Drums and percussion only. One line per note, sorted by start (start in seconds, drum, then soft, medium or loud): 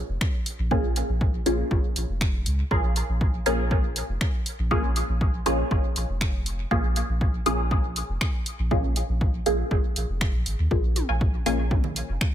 0.21 finger snap medium
0.21 kick loud
0.46 open hi-hat medium
0.71 kick loud
0.96 open hi-hat medium
1.21 kick loud
1.46 open hi-hat medium
1.71 kick loud
1.96 open hi-hat medium
2.21 finger snap medium
2.21 kick loud
2.46 open hi-hat medium
2.71 kick loud
2.96 open hi-hat medium
3.21 kick loud
3.46 open hi-hat medium
3.71 kick loud
3.96 open hi-hat medium
4.21 finger snap medium
4.21 kick loud
4.46 open hi-hat medium
4.71 kick loud
4.96 open hi-hat medium
5.21 kick loud
5.46 open hi-hat medium
5.71 kick loud
5.96 open hi-hat medium
6.21 finger snap medium
6.21 kick loud
6.46 open hi-hat medium
6.71 kick loud
6.96 open hi-hat medium
7.21 kick loud
7.46 open hi-hat medium
7.71 kick loud
7.96 open hi-hat medium
8.21 finger snap medium
8.21 kick loud
8.46 open hi-hat medium
8.71 kick loud
8.96 open hi-hat medium
9.21 kick loud
9.46 open hi-hat medium
9.71 kick loud
9.96 open hi-hat medium
10.21 finger snap loud
10.21 kick loud
10.46 open hi-hat medium
10.71 kick loud
10.96 open hi-hat medium
10.96 high tom medium
11.21 kick loud
11.46 open hi-hat medium
11.71 kick loud
11.71 high tom medium
11.84 low conga medium
11.96 open hi-hat medium
12.21 finger snap loud
12.21 kick loud